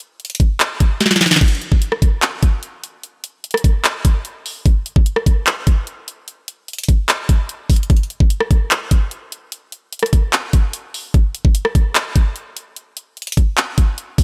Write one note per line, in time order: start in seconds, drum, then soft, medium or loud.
0.20 closed hi-hat medium
0.25 closed hi-hat medium
0.30 closed hi-hat medium
0.35 closed hi-hat medium
0.40 kick medium
0.40 closed hi-hat medium
0.60 clap loud
0.60 closed hi-hat medium
0.80 kick medium
0.80 closed hi-hat medium
1.00 snare medium
1.00 closed hi-hat medium
1.06 snare medium
1.11 snare medium
1.16 snare medium
1.21 snare medium
1.21 closed hi-hat medium
1.21 open hi-hat medium
1.26 snare medium
1.26 closed hi-hat medium
1.31 snare loud
1.31 closed hi-hat medium
1.36 snare medium
1.41 kick loud
1.41 closed hi-hat medium
1.41 crash loud
1.48 closed hi-hat medium
1.55 closed hi-hat soft
1.62 closed hi-hat medium
1.72 kick loud
1.82 closed hi-hat medium
1.92 cross-stick loud
2.02 kick medium
2.02 closed hi-hat medium
2.22 clap loud
2.22 closed hi-hat medium
2.43 kick loud
2.43 closed hi-hat medium
2.63 closed hi-hat medium
2.84 closed hi-hat medium
3.03 closed hi-hat medium
3.24 closed hi-hat medium
3.44 closed hi-hat medium
3.51 cross-stick loud
3.51 closed hi-hat medium
3.57 closed hi-hat medium
3.64 kick loud
3.64 closed hi-hat medium
3.84 clap loud
3.84 closed hi-hat medium
4.05 kick loud
4.05 closed hi-hat medium
4.25 closed hi-hat medium
4.46 open hi-hat medium
4.66 kick loud
4.66 closed hi-hat medium
4.86 closed hi-hat medium
4.96 kick loud
5.06 closed hi-hat medium
5.16 cross-stick loud
5.26 kick medium
5.26 closed hi-hat medium
5.47 clap loud
5.47 closed hi-hat medium
5.67 kick loud
5.67 closed hi-hat medium
5.87 closed hi-hat medium
6.08 closed hi-hat medium
6.28 closed hi-hat medium
6.48 closed hi-hat medium
6.68 closed hi-hat medium
6.73 closed hi-hat medium
6.78 closed hi-hat medium
6.83 closed hi-hat medium
6.89 kick medium
6.89 closed hi-hat medium
7.09 clap loud
7.09 closed hi-hat medium
7.29 kick loud
7.29 closed hi-hat medium
7.49 closed hi-hat medium
7.70 kick medium
7.70 closed hi-hat medium
7.70 open hi-hat medium
7.76 closed hi-hat medium
7.83 closed hi-hat medium
7.90 kick loud
7.90 closed hi-hat medium
7.97 closed hi-hat soft
8.03 closed hi-hat soft
8.10 closed hi-hat medium
8.20 kick loud
8.30 closed hi-hat medium
8.40 cross-stick loud
8.51 kick medium
8.51 closed hi-hat medium
8.71 clap loud
8.71 closed hi-hat medium
8.91 kick loud
8.91 closed hi-hat medium
9.11 closed hi-hat medium
9.32 closed hi-hat medium
9.52 closed hi-hat medium
9.72 closed hi-hat medium
9.93 closed hi-hat medium
9.99 cross-stick loud
9.99 closed hi-hat medium
10.06 closed hi-hat medium
10.13 kick loud
10.13 closed hi-hat medium
10.33 clap loud
10.33 closed hi-hat medium
10.53 kick loud
10.53 closed hi-hat medium
10.73 closed hi-hat medium
10.94 open hi-hat medium
11.14 kick loud
11.14 closed hi-hat medium
11.35 closed hi-hat medium
11.45 kick loud
11.55 closed hi-hat medium
11.65 cross-stick loud
11.75 kick medium
11.75 closed hi-hat medium
11.95 clap loud
11.95 closed hi-hat medium
12.16 kick loud
12.16 closed hi-hat medium
12.36 closed hi-hat medium
12.57 closed hi-hat medium
12.76 closed hi-hat medium
12.97 closed hi-hat medium
13.17 closed hi-hat medium
13.22 closed hi-hat medium
13.27 closed hi-hat medium
13.32 closed hi-hat medium
13.37 kick loud
13.37 closed hi-hat medium
13.57 clap loud
13.57 closed hi-hat medium
13.78 kick loud
13.78 closed hi-hat medium
13.98 closed hi-hat medium
14.18 kick medium
14.18 closed hi-hat medium
14.18 open hi-hat medium